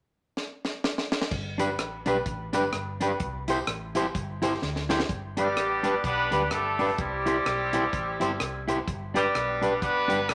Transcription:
0.37 snare
0.65 snare
0.84 snare
0.98 snare
1.12 snare
1.22 snare
1.31 fingered electric bass G1, kick, crash
1.58 clean electric guitar D4 G4 B4, honky-tonk piano D4 G4 B4, closed hi-hat, tambourine
1.79 fingered electric bass A1, cross-stick, closed hi-hat
2.06 fingered electric bass B1, honky-tonk piano D4 G4 B4, clean electric guitar D4 G4 B4, closed hi-hat, tambourine
2.26 fingered electric bass A1, kick, closed hi-hat
2.53 fingered electric bass G1, clean electric guitar D4 G4 B4, honky-tonk piano D4 G4 B4, closed hi-hat, tambourine
2.73 fingered electric bass G1, cross-stick, closed hi-hat
3.00 clean electric guitar D4 G4 B4, honky-tonk piano D4 G4 B4, closed hi-hat, tambourine
3.20 fingered electric bass C2, kick, closed hi-hat
3.48 clean electric guitar E4 G4 C5, honky-tonk piano E4 G4 C5, closed hi-hat, tambourine
3.67 fingered electric bass A1, cross-stick, closed hi-hat
3.95 clean electric guitar E4 G4 C5, honky-tonk piano E4 G4 C5, closed hi-hat, tambourine
4.15 fingered electric bass G1, kick, closed hi-hat
4.42 clean electric guitar E4 G4 C5, honky-tonk piano E4 G4 C5, closed hi-hat, tambourine
4.62 fingered electric bass D2, snare
4.76 snare
4.89 clean electric guitar E4 G4 C5, honky-tonk piano E4 G4 C5, snare, tambourine
5.00 snare
5.09 fingered electric bass G1, kick, closed hi-hat
5.37 horn section G3 B3 D4 G4, clean electric guitar D4 G4 B4, closed hi-hat
5.56 fingered electric bass A1, cross-stick, closed hi-hat
5.83 clean electric guitar D4 G4 B4, closed hi-hat
6.04 fingered electric bass B1, horn section B3 D4 G4 B4, kick, closed hi-hat
6.31 fingered electric bass D2, clean electric guitar D4 G4 B4, closed hi-hat
6.51 fingered electric bass G1, horn section A3 D4 A4, cross-stick, closed hi-hat
6.79 clean electric guitar D4 G4 B4, open hi-hat
6.98 fingered electric bass C2, horn section G3 C4 E4 G4, kick, closed hi-hat
7.26 clean electric guitar E4 G4 C5, closed hi-hat
7.46 fingered electric bass B1, cross-stick, closed hi-hat
7.73 clean electric guitar E4 G4 C5, closed hi-hat
7.93 fingered electric bass A1, kick, closed hi-hat
8.20 fingered electric bass G1, clean electric guitar E4 G4 C5, closed hi-hat
8.40 fingered electric bass C2, cross-stick, closed hi-hat
8.68 clean electric guitar E4 G4 C5, closed hi-hat
8.88 fingered electric bass G1, kick, closed hi-hat
9.14 horn section G3 B3 D4 G4, clean electric guitar D4 G4 B4, closed hi-hat
9.35 fingered electric bass B1, cross-stick, closed hi-hat
9.61 clean electric guitar D4 G4 B4, closed hi-hat
9.82 fingered electric bass A1, horn section B3 D4 G4 B4, kick, closed hi-hat
10.08 fingered electric bass G1, clean electric guitar D4 G4 B4, closed hi-hat
10.29 fingered electric bass B1, horn section G3 B3 D4 G4, cross-stick, closed hi-hat

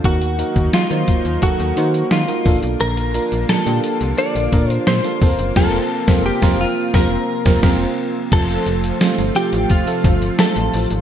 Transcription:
0.04 fm bass D#2, analog synth pad D#3 F#3 A#3 D#4, fm electric piano A#3 D#4 F#4 A#4, clean electric guitar F#4, kick, closed hi-hat
0.22 closed hi-hat
0.38 fm electric piano A#3 D#4 F#4 A#4, closed hi-hat
0.56 fm bass D#2, kick, closed hi-hat
0.73 fm bass D#3, clean electric guitar F4, snare, closed hi-hat
0.90 fm bass D#3, fm electric piano F#3 A#3 D#4 C5, closed hi-hat
1.08 kick, closed hi-hat
1.25 fm bass D#2, closed hi-hat
1.42 fm electric piano A#3 D#4 F#4 A4, clean electric guitar F#4, kick, closed hi-hat
1.60 fm bass D#2, closed hi-hat
1.76 fm bass D#3, fm electric piano A#3 D#4 F#4 C5, closed hi-hat
1.94 closed hi-hat
2.11 fm bass D#3, clean electric guitar F4, snare, closed hi-hat
2.28 fm electric piano A#3 D#4 F#4 A#4, closed hi-hat
2.45 fm bass A#1, analog synth pad D3 F3 F4, fm electric piano A#3 D4 F4 A4, kick, open hi-hat
2.63 fm bass B1, closed hi-hat
2.80 fm bass A#1, clean electric guitar A#4, closed hi-hat
2.97 closed hi-hat
3.14 fm electric piano A#3 D4 F4 A#4, closed hi-hat
3.32 fm bass A#1, closed hi-hat
3.49 fm bass A#2, clean electric guitar A4, snare, closed hi-hat
3.66 fm bass A#2, fm electric piano A#3 D4 F4 G4, closed hi-hat
3.84 closed hi-hat
4.01 fm bass C2, closed hi-hat
4.18 fm electric piano A#3 D4 F4 A4, clean electric guitar D5, closed hi-hat
4.35 fm bass A#1, closed hi-hat
4.52 fm bass A#2, fm electric piano A#3 D4 F4 A#4, kick, closed hi-hat
4.70 clean electric guitar C5, closed hi-hat
4.87 fm bass A#2, clean electric guitar C5, snare, closed hi-hat
5.04 fm electric piano A#3 D4 F4 A4, closed hi-hat
5.21 fm bass F1, analog synth pad C3 F3, fm electric piano A#3 C4 F4 A4, kick, open hi-hat
5.29 fm electric piano A#4
5.39 fm bass F#1, closed hi-hat
5.56 fm bass F1, fm electric piano A#3 C4 F4, analog polysynth C4 F4 A#4, clean electric guitar A4, kick, snare, crash
5.63 fm electric piano A#4
6.07 fm bass F1, fm electric piano A#3 C4 F4, analog polysynth C4 F4 A#4, kick, snare
6.26 clean electric guitar G4
6.42 fm bass F1, fm electric piano A#3 C4 F4 A#4, analog polysynth C4 F4 A#4, kick, snare
6.61 clean electric guitar F4
6.94 fm bass F1, fm electric piano A#3 C4 F4 A#4, analog polysynth C4 F4 A#4, clean electric guitar A#4, kick, snare
7.45 fm bass F1, fm electric piano A#3 C4 F4 A#4, analog polysynth C4 F4 A#4, kick, snare
7.62 fm bass F1, fm electric piano A#3 C4 F4 A#4, analog polysynth C4 F4 A#4, kick, snare, crash
8.32 fm bass F1, analog synth pad C3 F3 A3 F4, fm electric piano F3 A3 C4 F4 A4, analog polysynth F4 A4 C5, clean electric guitar A4, kick, closed hi-hat, crash
8.49 closed hi-hat
8.66 fm bass F1, closed hi-hat
8.84 closed hi-hat
9.00 fm electric piano F3 A3 C4 F4 C5, snare, closed hi-hat, tambourine
9.18 fm bass G1, closed hi-hat
9.35 fm electric piano F3 A3 C4 F4 G4, clean electric guitar G4, closed hi-hat
9.53 fm bass A1, closed hi-hat
9.70 clean electric guitar F4, kick, closed hi-hat
9.86 fm electric piano F3 A3 C4 F4 A4, closed hi-hat
10.04 fm bass G1, kick, closed hi-hat
10.22 closed hi-hat
10.38 fm electric piano F3 A3 C4 F4 A4, clean electric guitar A4, snare, closed hi-hat, tambourine
10.56 fm bass A1, closed hi-hat
10.74 fm bass A1, open hi-hat
10.91 fm bass G#1, closed hi-hat

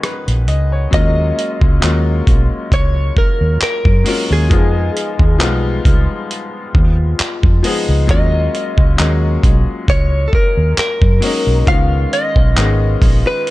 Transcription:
Already playing: grand piano D#3 G#3 B3 C#4 F#4 G#4
0.03 grand piano B4, cross-stick, closed hi-hat
0.28 fingered electric bass A#1, closed hi-hat
0.48 fingered electric bass C#2, grand piano D#5, closed hi-hat
0.72 grand piano C#5
0.91 fingered electric bass D#2, grand piano F#3 G#3 A#3 C#4, clean electric guitar D#5, kick, closed hi-hat
0.95 grand piano F4
1.39 closed hi-hat
1.61 fingered electric bass C#2, kick
1.80 fingered electric bass D#2, grand piano F#3 G#3 A#3 C#4, clap, closed hi-hat
1.85 grand piano F4
2.27 fingered electric bass B1, kick, closed hi-hat
2.72 fingered electric bass C#2, clean electric guitar C#5, kick, closed hi-hat
3.17 clean electric guitar A#4, kick
3.41 fingered electric bass D#2
3.61 clean electric guitar A#4, muted fingered electric bass stroke, clap, closed hi-hat
3.85 fingered electric bass F#2, kick
4.04 grand piano F#3 G#3 A#3 C#4, open hi-hat
4.08 grand piano F4
4.31 fingered electric bass D#2, clean electric guitar G#4
4.49 fingered electric bass F2, grand piano F3 G#3 B3 D#4, kick, closed hi-hat
4.53 grand piano F4
4.97 closed hi-hat
5.19 fingered electric bass D#2, kick
5.38 fingered electric bass B1, grand piano F3 G3 B3 D#4, clap, closed hi-hat
5.43 grand piano G#3 F4
5.85 fingered electric bass C#2, kick, closed hi-hat
6.31 closed hi-hat
6.75 fingered electric bass D#2, kick
7.20 muted fingered electric bass stroke, clap, closed hi-hat
7.43 fingered electric bass F2, kick
7.63 grand piano F3 G#3 B3 D#4, open hi-hat
7.67 grand piano G#4
7.89 fingered electric bass C#2
8.07 fingered electric bass D#2, grand piano F#3 G#3 A#3 C#4, clean electric guitar D#5, kick, closed hi-hat
8.11 grand piano F4
8.55 closed hi-hat
8.78 fingered electric bass C#2, kick
8.97 fingered electric bass D#2, grand piano F#3 G#3 A#3 C#4, clap, closed hi-hat
9.01 grand piano G#4
9.44 fingered electric bass B1, kick, closed hi-hat
9.88 fingered electric bass C#2, clean electric guitar C#5, kick, closed hi-hat
10.28 clean electric guitar A4
10.33 clean electric guitar A#4, kick
10.57 fingered electric bass D#2
10.78 clean electric guitar A#4, muted fingered electric bass stroke, clap, closed hi-hat
11.02 fingered electric bass F#2, kick
11.21 grand piano F#3 G#3 A#3 C#4, open hi-hat
11.25 grand piano D#4
11.47 fingered electric bass B1
11.66 fingered electric bass C#2, grand piano D#3 G#3 B3 C#4, clean electric guitar F5, kick, closed hi-hat
11.70 grand piano F4
12.13 clean electric guitar D#5, closed hi-hat
12.36 fingered electric bass B1, kick
12.55 fingered electric bass G#1, grand piano D#3 G#3 B3 C#4, clap, closed hi-hat
12.59 grand piano G#4
13.02 fingered electric bass A#1, kick, open hi-hat
13.27 clean electric guitar B4
13.47 closed hi-hat

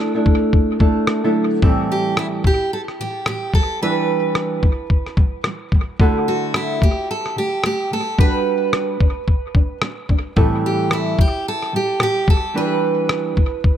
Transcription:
Already playing: nylon-string guitar A3 D4 E4 A4
0.15 nylon-string guitar A3 D4 E4 A4
0.26 kick
0.53 kick
0.79 nylon-string guitar A3 D4 E4 A4, kick
1.07 cross-stick
1.24 nylon-string guitar D3 F#3 A3 D4 E4 A4
1.62 nylon-string guitar A2 E3 G3 C4 E4 A4, kick
1.92 steel-string acoustic guitar G4
2.17 steel-string acoustic guitar E4, cross-stick
2.44 nylon-string guitar A2 E3 G3, steel-string acoustic guitar G4, kick
2.73 steel-string acoustic guitar A4
2.88 cross-stick
2.99 nylon-string guitar A2 E3 G3, steel-string acoustic guitar G4
3.26 nylon-string guitar A2 E3 G3, steel-string acoustic guitar G4, cross-stick
3.54 nylon-string guitar E3 G3, steel-string acoustic guitar A4, kick
3.82 nylon-string guitar E3 G3 D4 E4 B4, steel-string acoustic guitar B4
4.35 cross-stick
4.63 nylon-string guitar E3 G3, kick
4.90 kick
5.06 cross-stick
5.17 nylon-string guitar E3 G3, kick
5.44 nylon-string guitar E3 G3, cross-stick
5.72 nylon-string guitar E3 G3, kick
6.00 nylon-string guitar D3 A3 E4 F#4 A4, kick
6.28 steel-string acoustic guitar F#4
6.54 steel-string acoustic guitar E4, cross-stick
6.82 nylon-string guitar D3 A3, steel-string acoustic guitar G4, kick
7.11 steel-string acoustic guitar A4
7.26 cross-stick
7.36 nylon-string guitar D3 A3, steel-string acoustic guitar G4
7.63 nylon-string guitar D3 A3, steel-string acoustic guitar G4, cross-stick
7.91 nylon-string guitar D3 A3, steel-string acoustic guitar A4
8.18 nylon-string guitar G3 D4 F#4 B4, steel-string acoustic guitar B4, kick
8.73 cross-stick
9.00 nylon-string guitar G3 D4, kick
9.28 kick
9.54 nylon-string guitar G3 D4, kick
9.82 nylon-string guitar G3 D4, cross-stick
10.09 nylon-string guitar G3 D4, kick
10.36 nylon-string guitar A2 E3 G3 C4 E4 A4, kick
10.66 steel-string acoustic guitar G4
10.91 steel-string acoustic guitar E4, cross-stick
11.18 nylon-string guitar A2 E3 G3, steel-string acoustic guitar G4, kick
11.48 steel-string acoustic guitar A4
11.62 cross-stick
11.72 nylon-string guitar A2 E3 G3
11.76 steel-string acoustic guitar G4
11.99 nylon-string guitar A2 E3 G3, steel-string acoustic guitar G4, cross-stick
12.26 nylon-string guitar E3 G3, steel-string acoustic guitar A4, kick
12.54 nylon-string guitar E3 G3 D4 E4 B4, steel-string acoustic guitar B4
13.09 cross-stick
13.35 nylon-string guitar E3 G3, kick
13.64 kick

